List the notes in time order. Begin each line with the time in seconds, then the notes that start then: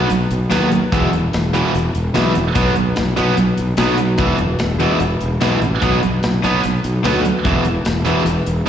0.10 B1, closed hi-hat
0.31 B1, closed hi-hat
0.51 D#2 B2 F#3 B3, snare, closed hi-hat
0.71 closed hi-hat
0.92 E1 E2 B2 E3, kick, closed hi-hat
1.13 E1, closed hi-hat
1.33 E1, snare, closed hi-hat
1.53 E2 B2 E3, closed hi-hat
1.75 E1, closed hi-hat
1.95 E1, closed hi-hat
2.15 B1 E2 B2 E3, snare, closed hi-hat
2.35 E1, closed hi-hat
2.55 B1 B2 F#3 B3, kick, closed hi-hat
2.76 B1, closed hi-hat
2.96 B1, snare, closed hi-hat
3.17 B1 B2 F#3 B3, closed hi-hat
3.37 B1, closed hi-hat
3.57 B1, closed hi-hat
3.77 B1 B2 F#3 B3, snare, closed hi-hat
3.98 closed hi-hat
4.18 E1 E2 B2 E3, kick, closed hi-hat
4.38 E1, closed hi-hat
4.59 E1, snare, closed hi-hat
4.80 E2 B2 E3, closed hi-hat
5.00 E1, closed hi-hat
5.21 E1, closed hi-hat
5.41 B1 E2 B2 E3, snare, closed hi-hat
5.62 A1, closed hi-hat
5.82 B1 B2 F#3 B3, kick, closed hi-hat
6.03 B1, closed hi-hat
6.23 B1, snare, closed hi-hat
6.43 B1 B2 F#3 B3, closed hi-hat
6.64 B1, closed hi-hat
6.84 B1, closed hi-hat
7.04 D2 B2 F#3 B3, snare, closed hi-hat
7.25 closed hi-hat
7.45 E1 E2 B2 E3, kick, closed hi-hat
7.65 E1, closed hi-hat
7.85 E1, snare, closed hi-hat
8.05 E2 B2 E3, closed hi-hat
8.26 E1, closed hi-hat
8.46 E1, closed hi-hat
8.66 E2